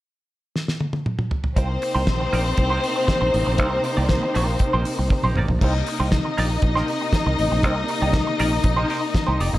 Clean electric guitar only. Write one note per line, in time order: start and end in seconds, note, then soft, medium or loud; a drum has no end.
1.56 1.71 A#3 medium
1.56 1.70 D#4 medium
1.56 1.69 G4 medium
1.56 1.68 C5 medium
1.69 muted clean electric guitar stroke soft
1.82 muted clean electric guitar stroke soft
1.95 2.07 A#3 medium
1.95 2.06 D#4 medium
1.95 2.06 G4 medium
1.95 2.06 C5 medium
2.08 muted clean electric guitar stroke soft
2.20 muted clean electric guitar stroke medium
2.33 2.47 A#3 medium
2.33 2.46 D#4 medium
2.33 2.45 G4 medium
2.33 2.45 D5 medium
2.46 muted clean electric guitar stroke soft
2.58 muted clean electric guitar stroke soft
2.70 2.82 A#3 medium
2.70 2.82 D#4 medium
2.70 2.83 G4 medium
2.70 2.83 C5 medium
2.96 muted clean electric guitar stroke soft
3.09 muted clean electric guitar stroke soft
3.21 muted clean electric guitar stroke medium
3.46 muted clean electric guitar stroke soft
3.59 3.73 A#3 medium
3.59 3.72 D#4 medium
3.59 3.71 G4 medium
3.59 3.71 C5 medium
3.72 muted clean electric guitar stroke medium
3.85 muted clean electric guitar stroke soft
3.97 4.08 A#3 soft
3.97 4.09 D#4 medium
3.97 4.08 G4 medium
3.97 4.08 D5 medium
4.10 muted clean electric guitar stroke soft
4.23 muted clean electric guitar stroke soft
4.34 4.55 A#3 medium
4.34 4.48 D#4 medium
4.34 4.47 G4 medium
4.34 4.47 D5 medium
4.48 muted clean electric guitar stroke soft
4.61 muted clean electric guitar stroke soft
4.73 4.85 A#3 soft
4.73 4.85 D#4 medium
4.73 4.86 G4 medium
4.73 4.86 C5 medium
4.86 muted clean electric guitar stroke soft
4.99 muted clean electric guitar stroke soft
5.12 muted clean electric guitar stroke soft
5.24 5.36 A#3 soft
5.24 5.35 D#4 medium
5.24 5.35 G4 medium
5.24 5.35 C5 medium
5.37 5.50 A#3 medium
5.37 5.50 D#4 medium
5.37 5.50 G4 medium
5.37 5.50 D5 medium
5.50 muted clean electric guitar stroke soft
5.62 5.76 A#3 medium
5.62 5.75 D#4 medium
5.62 5.74 G4 loud
5.62 5.73 C5 loud
5.74 muted clean electric guitar stroke soft
5.87 muted clean electric guitar stroke soft
6.00 6.11 A#3 medium
6.00 6.11 D#4 soft
6.00 6.11 G4 medium
6.00 6.10 C5 medium
6.25 muted clean electric guitar stroke soft
6.37 6.51 A#3 medium
6.37 6.51 D#4 medium
6.37 6.50 G4 medium
6.37 6.50 D5 loud
6.51 muted clean electric guitar stroke soft
6.63 muted clean electric guitar stroke soft
6.75 6.88 A#3 medium
6.75 6.88 D#4 medium
6.75 6.88 G4 medium
6.75 6.89 C5 medium
6.89 muted clean electric guitar stroke soft
7.01 muted clean electric guitar stroke soft
7.14 muted clean electric guitar stroke soft
7.26 muted clean electric guitar stroke medium
7.52 muted clean electric guitar stroke soft
7.64 7.78 A#3 medium
7.64 7.77 D#4 medium
7.64 7.76 G4 medium
7.64 7.75 C5 medium
7.77 muted clean electric guitar stroke medium
7.89 muted clean electric guitar stroke soft
8.02 8.13 A#3 medium
8.02 8.13 D#4 medium
8.02 8.13 G4 medium
8.02 8.13 D5 medium
8.27 muted clean electric guitar stroke soft
8.39 8.53 A#3 medium
8.39 8.52 D#4 loud
8.39 8.52 G4 medium
8.39 8.52 D5 medium
8.52 muted clean electric guitar stroke soft
8.64 muted clean electric guitar stroke soft
8.76 8.88 A#3 medium
8.76 8.88 D#4 medium
8.76 8.89 G4 medium
8.76 8.90 C5 medium
8.89 9.00 A#3 medium
8.89 9.01 D#4 medium
8.89 9.01 G4 medium
8.89 9.01 C5 medium
9.15 muted clean electric guitar stroke soft
9.27 9.38 A#3 medium
9.27 9.39 D#4 medium
9.27 9.39 G4 medium
9.27 9.38 C5 medium
9.39 9.54 A#3 medium
9.39 9.53 D#4 medium
9.39 9.52 G4 loud
9.39 9.52 D5 medium
9.53 muted clean electric guitar stroke soft